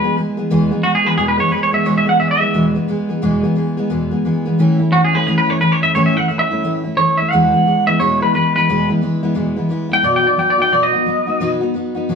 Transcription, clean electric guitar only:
Already playing: B4
0.83 F#4
0.95 G#4
1.06 B4
1.18 G#4
1.28 B4
1.40 C#5
1.52 B4
1.63 C#5
1.74 E5
1.86 C#5
1.98 E5
2.09 F#5
2.20 E5
2.31 E5
4.93 F#4
5.05 G#4
5.15 B4
5.27 G#4
5.38 B4
5.50 C#5
5.61 B4
5.72 C#5
5.83 E5
5.95 C#5
6.06 E5
6.17 F#5
6.28 E5
6.39 E5
6.97 C#5
7.18 E5
7.31 F#5
7.87 E5
8.00 C#5
8.22 B4
8.35 B4
8.56 B4
9.93 G5
10.04 D5
10.16 G5
10.27 D5
10.39 G5
10.50 D5
10.62 G5
10.73 D5
10.83 D#5

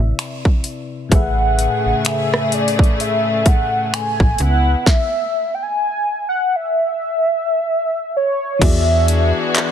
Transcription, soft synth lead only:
Already playing: E5
1.14 F#5
2.08 E5
2.54 D5
3.01 E5
3.48 F#5
3.94 G#5
4.42 F#5
4.89 E5
5.54 G5
5.63 G#5
6.29 F#5
6.56 E5
8.16 C#5
8.63 E5

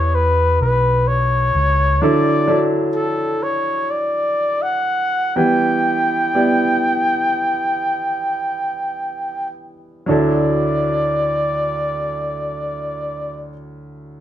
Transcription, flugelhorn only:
Already playing: C#5
0.15 B4
0.61 B4
1.07 C#5
2.02 D5
2.95 A4
3.43 C#5
3.90 D5
4.62 F#5
5.36 G5
10.10 D5

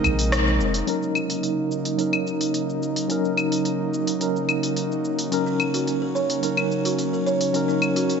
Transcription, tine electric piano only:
Already playing: G#3 C4 D#4 A#4
0.86 F#3 C#4 D#4 A#4
1.97 F#3 C#4 D#4 A#4
3.08 F#3 C#4 D#4 A#4
4.19 F#3 C#4 D#4 A#4
5.31 F#3 C#4 D#4 A#4
6.41 F#3 C#4 D#4 A#4
7.53 F#3 C#4 D#4 A#4

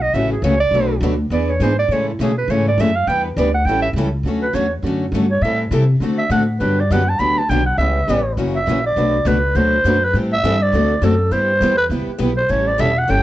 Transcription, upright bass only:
Already playing: B1
0.14 A1
0.42 C#2
0.71 B1
1.00 D2
1.30 E2
1.60 G#2
1.88 A2
2.19 B2
2.48 G#2
2.78 F#2
3.07 E2
3.37 D2
3.65 A1
3.93 C#2
4.23 D2
4.53 E2
4.82 F#2
5.11 G2
5.41 A2
5.71 C3
6.00 D3
6.30 A2
6.60 G2
6.90 F#2
7.19 D2
7.49 B1
7.77 C#2
8.08 A1
8.37 F#1
8.67 A#1
8.96 B1
9.25 C#2
9.55 D2
9.84 F#2
10.14 A2
10.43 G2
10.72 D2
11.01 F#2
11.31 G2
11.61 E2
11.90 C#2
12.07 muted upright bass stroke
12.20 B1
12.50 A1
12.79 E1
13.09 G1

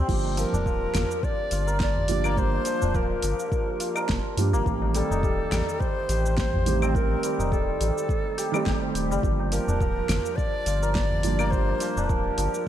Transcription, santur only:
Already playing: G3 C4 D#4 G4 C5
0.37 F3
0.54 D4
0.66 F3
0.95 F3
1.52 F4
1.67 A#4
2.25 A#3
2.66 F3
2.82 D4
2.94 F3
3.23 F3
3.80 F4
3.96 A#4
4.53 A#3
4.95 G3
5.11 D#4
5.24 G3
5.52 G3
6.10 G4
6.25 C5
6.82 C4
7.24 G3
7.39 D#4
7.52 G3
7.80 G3
8.38 G4
8.53 G3
8.66 G4
8.82 C5
9.11 G3
9.52 F3
9.68 D4
9.81 F3
10.10 F3
10.67 F4
10.82 A#4
11.39 A#3
11.81 F3
11.97 D4
12.10 F3
12.38 F3

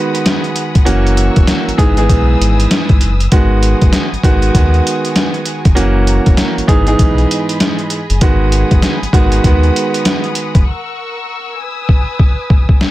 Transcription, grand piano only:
Already playing: D#3 G#3 B3 F#4
0.85 E3 A#3 C#4 F#4
1.78 G#2 E3 B3 D#4 G#4
1.97 G#2 E3 B3 D#4 G#4
3.32 D#3 G#3 B3 F#4
4.24 D#3 G#3 B3 F#4
4.55 D#3 G#3 B3 F#4
5.75 E3 A#3 C#4 F#4
6.68 G#2 E3 B3 D#4 G#4
6.87 G#2 E3 B3 D#4 G#4
8.22 D#3 G#3 B3 F#4
9.13 D#3 G#3 B3 F#4
9.45 D#3 G#3 B3 F#4

